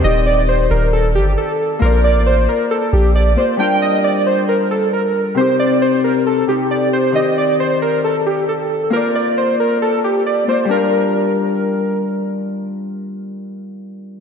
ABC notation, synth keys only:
X:1
M:4/4
L:1/8
Q:1/4=135
K:Gm
V:1 name="Synth keys"
e d c B A G A2 | B d c B A G d c | g e d c B A B2 | c d c B A G d c |
e d c B A G A2 | B d c B A G d c | B6 z2 | z8 |]